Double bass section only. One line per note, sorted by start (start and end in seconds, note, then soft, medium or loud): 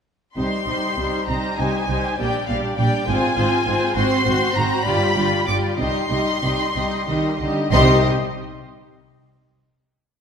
0.37 0.45 C2 soft
0.67 0.75 C2 soft
0.97 1.05 C2 soft
1.28 1.36 C2 soft
1.58 1.66 C2 soft
1.89 1.97 C2 soft
2.19 2.27 A#1 medium
2.49 2.57 A#1 medium
2.78 2.86 A#1 soft
3.08 3.16 G#1 medium
3.38 3.46 G#1 medium
3.67 3.75 G#1 medium
3.95 4.03 G#1 medium
4.27 4.35 G#1 medium
4.57 4.65 G#1 medium
4.87 4.95 G1 medium
5.17 5.25 G1 medium
5.47 5.55 G1 medium
5.80 5.88 C2 soft
6.11 6.19 C2 soft
6.44 6.52 C2 soft
6.76 6.84 C2 soft
7.08 7.16 C2 soft
7.40 7.48 C2 soft
7.72 8.06 C2 medium